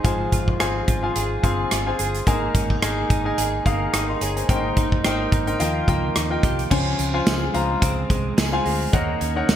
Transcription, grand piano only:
0.04 G#2 F4 G#4 C5 G#5
0.59 F4 G#4 C5 G#5
1.03 F4 G#4 C5 G#5
1.43 F4 G#4 C5 G#5
1.86 F4 G#4 C5 G#5
2.26 G#2 D#4 G#4 A#4 G#5
2.82 D#4 G#4 A#4 G#5
3.25 D#4 G#4 A#4 G#5
3.65 D#4 G#4 A#4 F5
3.93 G5 D#6
4.09 D#5 C6
4.21 C#5 A#5
4.36 C5 G#5
4.48 G#2 C#4 A#4 C5 G5
4.55 D#4
5.04 D#4 A#4 C5 G5
5.32 A#5
5.47 D#4 A#4 C5 G5
5.59 D#3 F4 A#4 D#5 F5 G5
5.87 F4 A#4 D#5 G5
6.16 D#5
6.30 F4 A#4 D#5 G5
6.70 C#3 F4 C5 C#5 G#5
7.13 F4 C5 F5 G#5
7.54 F4 C5 F5 A#5
8.52 F4 C5 F5 G#5
8.93 D#3 D#4 A#4 C#5 F#5
9.36 D#4 A#4 C#5 F#5

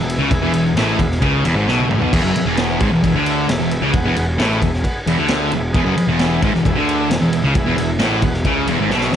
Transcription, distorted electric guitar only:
Already playing: E2
0.19 C#3
0.30 E2
0.42 E2
0.53 E2
0.77 A2
1.00 E2
1.22 C#3
1.45 E2
1.56 G#2
1.67 B2
1.90 A2
2.01 B2
2.13 E2
2.24 F#2
2.36 muted distorted electric guitar stroke
2.46 E2
2.82 G#2
2.92 E2
3.03 E2
3.15 D3
3.48 E2
3.59 E2
3.82 C#3
3.93 E2
4.05 E2
4.17 E2
4.38 A2
4.62 E2
5.07 E2
5.18 D3
5.53 E2
5.75 E2
5.85 F#2
5.97 muted distorted electric guitar stroke
6.09 E2
6.43 G#2
6.54 E2
6.65 E2
6.75 D3
7.10 E2
7.21 E2
7.44 C#3
7.55 E2
7.66 E2
7.77 E2
7.99 A2
8.23 E2
8.45 C#3
8.68 E2
8.80 G#2
8.91 B2

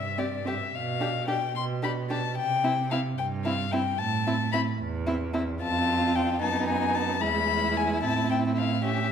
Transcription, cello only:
Already playing: G2
0.72 B2
1.54 B2
2.36 C3
3.17 G2
3.99 A2
4.79 E2
5.61 F2
6.42 F#2
7.23 E2
8.03 A2

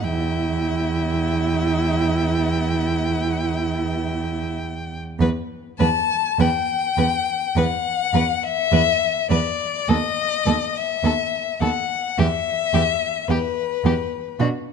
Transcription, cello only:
0.04 E2
5.20 E2
5.80 E2
6.39 E2
6.98 E2
7.56 E2
8.13 E2
8.72 E2
9.30 E2
9.89 D#2
10.46 D#2
11.04 D#2
11.61 D#2
12.19 E2
12.74 E2
13.29 E2
13.85 E2
14.40 B2

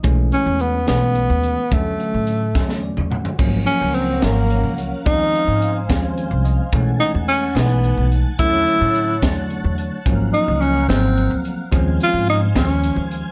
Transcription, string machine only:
3.37 C#4 A#4 F5 F#5
5.06 C5 G#5
6.72 F#5 G#5 A5
8.37 C#5 F#5
10.08 A#4 F5 F#5
11.74 C5 F5 G#5

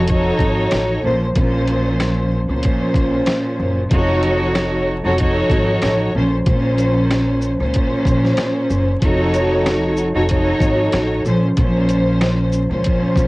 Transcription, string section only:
0.07 F3 D#4 F#4 A4 C#5
1.03 A#2 F3 C#4 C5
1.34 A#2 F3 C#4 C5
2.48 A#2 F3 C#4 C5
3.90 F3 D#4 F#4 A4 C#5
5.03 F3 D#4 F#4 A4 C#5
5.18 F3 D#4 F#4 A4 C#5
6.14 A#2 F3 C#4 C5
6.45 A#2 F3 C#4 C5
7.58 A#2 F3 C#4 C5
9.01 F3 D#4 F#4 A4 C#5
10.14 F3 D#4 F#4 A4 C#5
10.28 F3 D#4 F#4 A4 C#5
11.25 A#2 F3 C#4 C5
11.56 A#2 F3 C#4 C5
12.69 A#2 F3 C#4 C5

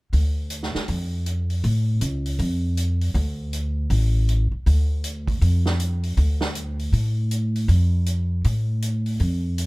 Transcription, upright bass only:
0.13 D2
0.75 muted upright bass stroke
0.89 F2
1.64 A2
2.01 C#2
2.39 F2
3.14 D2
3.90 A1
4.51 muted upright bass stroke
4.66 D2
5.41 F2
6.17 D2
6.93 A2
7.68 F2
8.45 A2
9.20 F2

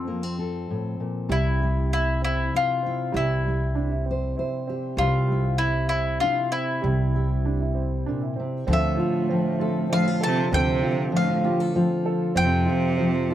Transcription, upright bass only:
Already playing: F2
1.29 C2
3.14 C2
4.97 C2
6.84 C2
8.68 D2
10.53 D2
12.36 F2

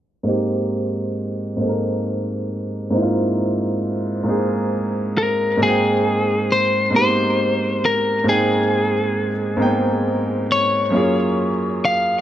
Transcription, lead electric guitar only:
5.18 A#4
5.63 G#4
6.52 C5
6.96 C5
7.85 A#4
8.29 G#4
10.52 C#5
11.85 F5

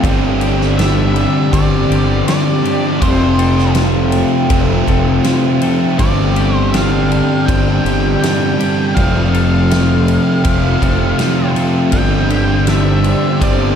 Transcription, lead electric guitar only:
0.78 E5
1.53 D5
2.28 D5
3.02 C5
5.99 D5
6.56 C5
6.72 F5
7.46 G5
8.20 G5
8.94 F5
9.31 F5
11.92 G5
12.68 E5
13.43 D5

